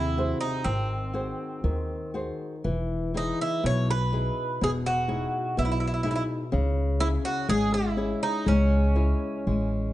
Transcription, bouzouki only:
0, 0, Header, 1, 2, 480
1, 0, Start_track
1, 0, Key_signature, 4, "minor"
1, 0, Tempo, 975610
1, 320, Time_signature, 2, 2, 24, 8
1, 805, Tempo, 1005025
1, 1765, Tempo, 964630
1, 4165, Tempo, 1011804
1, 4858, End_track
2, 0, Start_track
2, 0, Title_t, "Bouzouki"
2, 0, Program_c, 0, 25
2, 0, Note_on_c, 0, 64, 70
2, 198, Note_off_c, 0, 64, 0
2, 200, Note_on_c, 0, 63, 68
2, 317, Note_on_c, 0, 60, 67
2, 322, Note_off_c, 0, 63, 0
2, 1027, Note_off_c, 0, 60, 0
2, 1539, Note_on_c, 0, 63, 67
2, 1652, Note_off_c, 0, 63, 0
2, 1654, Note_on_c, 0, 64, 68
2, 1770, Note_off_c, 0, 64, 0
2, 1772, Note_on_c, 0, 73, 77
2, 1892, Note_off_c, 0, 73, 0
2, 1894, Note_on_c, 0, 71, 80
2, 2255, Note_off_c, 0, 71, 0
2, 2257, Note_on_c, 0, 68, 77
2, 2288, Note_off_c, 0, 68, 0
2, 2371, Note_on_c, 0, 66, 72
2, 2728, Note_off_c, 0, 66, 0
2, 2730, Note_on_c, 0, 64, 59
2, 2756, Note_off_c, 0, 64, 0
2, 2762, Note_on_c, 0, 64, 41
2, 2789, Note_off_c, 0, 64, 0
2, 2795, Note_on_c, 0, 64, 44
2, 2830, Note_off_c, 0, 64, 0
2, 2837, Note_on_c, 0, 64, 36
2, 2868, Note_off_c, 0, 64, 0
2, 2874, Note_on_c, 0, 64, 40
2, 2899, Note_off_c, 0, 64, 0
2, 2905, Note_on_c, 0, 64, 33
2, 2938, Note_off_c, 0, 64, 0
2, 2952, Note_on_c, 0, 64, 42
2, 2980, Note_off_c, 0, 64, 0
2, 2990, Note_on_c, 0, 64, 40
2, 3008, Note_off_c, 0, 64, 0
2, 3014, Note_on_c, 0, 64, 48
2, 3046, Note_off_c, 0, 64, 0
2, 3436, Note_on_c, 0, 64, 78
2, 3469, Note_off_c, 0, 64, 0
2, 3558, Note_on_c, 0, 66, 81
2, 3678, Note_off_c, 0, 66, 0
2, 3680, Note_on_c, 0, 68, 90
2, 3799, Note_off_c, 0, 68, 0
2, 3801, Note_on_c, 0, 64, 75
2, 4043, Note_off_c, 0, 64, 0
2, 4045, Note_on_c, 0, 63, 78
2, 4169, Note_off_c, 0, 63, 0
2, 4170, Note_on_c, 0, 61, 63
2, 4858, Note_off_c, 0, 61, 0
2, 4858, End_track
0, 0, End_of_file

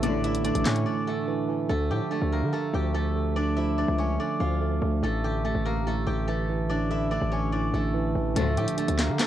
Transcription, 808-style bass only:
0, 0, Header, 1, 2, 480
1, 0, Start_track
1, 0, Key_signature, -1, "minor"
1, 0, Tempo, 416667
1, 32, Time_signature, 4, 2, 24, 8
1, 10678, End_track
2, 0, Start_track
2, 0, Title_t, "808-style bass"
2, 0, Program_c, 0, 38
2, 0, Note_on_c, 0, 33, 101
2, 586, Note_off_c, 0, 33, 0
2, 633, Note_on_c, 0, 33, 100
2, 748, Note_off_c, 0, 33, 0
2, 753, Note_on_c, 0, 45, 109
2, 983, Note_off_c, 0, 45, 0
2, 1952, Note_on_c, 0, 38, 106
2, 2192, Note_on_c, 0, 45, 100
2, 2209, Note_off_c, 0, 38, 0
2, 2306, Note_off_c, 0, 45, 0
2, 2552, Note_on_c, 0, 38, 103
2, 2792, Note_on_c, 0, 50, 97
2, 2809, Note_off_c, 0, 38, 0
2, 2906, Note_off_c, 0, 50, 0
2, 3151, Note_on_c, 0, 38, 101
2, 4426, Note_off_c, 0, 38, 0
2, 4473, Note_on_c, 0, 37, 97
2, 4818, Note_off_c, 0, 37, 0
2, 5072, Note_on_c, 0, 38, 101
2, 5533, Note_off_c, 0, 38, 0
2, 5551, Note_on_c, 0, 38, 105
2, 5782, Note_off_c, 0, 38, 0
2, 5792, Note_on_c, 0, 33, 107
2, 6368, Note_off_c, 0, 33, 0
2, 6393, Note_on_c, 0, 33, 102
2, 6969, Note_off_c, 0, 33, 0
2, 6993, Note_on_c, 0, 33, 101
2, 8267, Note_off_c, 0, 33, 0
2, 8312, Note_on_c, 0, 33, 102
2, 8889, Note_off_c, 0, 33, 0
2, 8912, Note_on_c, 0, 33, 97
2, 9373, Note_off_c, 0, 33, 0
2, 9392, Note_on_c, 0, 33, 100
2, 9623, Note_off_c, 0, 33, 0
2, 9632, Note_on_c, 0, 38, 104
2, 9873, Note_on_c, 0, 45, 101
2, 9890, Note_off_c, 0, 38, 0
2, 9987, Note_off_c, 0, 45, 0
2, 10232, Note_on_c, 0, 38, 111
2, 10472, Note_on_c, 0, 50, 102
2, 10490, Note_off_c, 0, 38, 0
2, 10587, Note_off_c, 0, 50, 0
2, 10678, End_track
0, 0, End_of_file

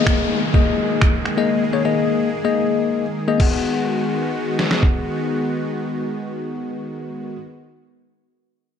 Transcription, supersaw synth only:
0, 0, Header, 1, 2, 480
1, 0, Start_track
1, 0, Key_signature, 5, "minor"
1, 0, Tempo, 476190
1, 1506, Time_signature, 4, 2, 24, 8
1, 8866, End_track
2, 0, Start_track
2, 0, Title_t, "Supersaw synth"
2, 0, Program_c, 0, 81
2, 0, Note_on_c, 0, 51, 78
2, 0, Note_on_c, 0, 56, 70
2, 0, Note_on_c, 0, 58, 70
2, 0, Note_on_c, 0, 68, 86
2, 3389, Note_off_c, 0, 58, 0
2, 3390, Note_off_c, 0, 51, 0
2, 3390, Note_off_c, 0, 56, 0
2, 3390, Note_off_c, 0, 68, 0
2, 3424, Note_on_c, 0, 51, 73
2, 3425, Note_on_c, 0, 56, 67
2, 3425, Note_on_c, 0, 66, 82
2, 3426, Note_on_c, 0, 59, 67
2, 7437, Note_off_c, 0, 51, 0
2, 7438, Note_off_c, 0, 56, 0
2, 7438, Note_off_c, 0, 66, 0
2, 7439, Note_off_c, 0, 59, 0
2, 8866, End_track
0, 0, End_of_file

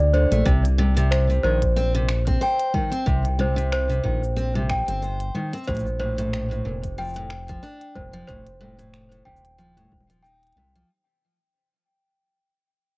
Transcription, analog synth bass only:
0, 0, Header, 1, 2, 480
1, 0, Start_track
1, 0, Tempo, 652174
1, 340, Time_signature, 4, 2, 24, 8
1, 9547, End_track
2, 0, Start_track
2, 0, Title_t, "Analog synth bass"
2, 0, Program_c, 0, 38
2, 0, Note_on_c, 0, 38, 100
2, 195, Note_off_c, 0, 38, 0
2, 232, Note_on_c, 0, 34, 91
2, 319, Note_off_c, 0, 34, 0
2, 340, Note_on_c, 0, 36, 97
2, 1029, Note_off_c, 0, 36, 0
2, 1061, Note_on_c, 0, 34, 95
2, 1749, Note_off_c, 0, 34, 0
2, 2259, Note_on_c, 0, 36, 95
2, 2948, Note_off_c, 0, 36, 0
2, 2983, Note_on_c, 0, 34, 100
2, 3556, Note_off_c, 0, 34, 0
2, 3594, Note_on_c, 0, 31, 90
2, 3909, Note_off_c, 0, 31, 0
2, 4184, Note_on_c, 0, 34, 92
2, 4871, Note_off_c, 0, 34, 0
2, 4899, Note_on_c, 0, 29, 101
2, 5588, Note_off_c, 0, 29, 0
2, 5861, Note_on_c, 0, 29, 91
2, 6062, Note_off_c, 0, 29, 0
2, 6099, Note_on_c, 0, 29, 95
2, 6789, Note_off_c, 0, 29, 0
2, 6820, Note_on_c, 0, 27, 102
2, 7269, Note_off_c, 0, 27, 0
2, 7299, Note_on_c, 0, 27, 103
2, 7749, Note_off_c, 0, 27, 0
2, 7772, Note_on_c, 0, 36, 96
2, 7977, Note_off_c, 0, 36, 0
2, 9547, End_track
0, 0, End_of_file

